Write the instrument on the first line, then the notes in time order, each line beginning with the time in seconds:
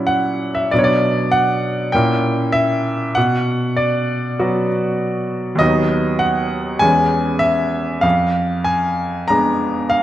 grand piano
Already playing: A#2 F#3 C#4 E4 C#5 F#5
0.07 F#5
0.55 E5
0.71 B2 F#3 B3 D4 D5
0.79 C#5
0.84 D5
1.31 F#5
1.92 A#2 A#3 C#4 E4 G5
2.52 E5
3.15 B2 F#5
3.76 D5
4.39 F#3 B3 F#4
5.55 D#2 D#5
5.61 F#3 B3 D#4
6.19 F#5
6.79 E2 G#3 B3 C#4 G#5
7.39 E5
8.01 F2 F5
8.64 G#5
9.28 G#3 B3 D4 A#5
9.90 F5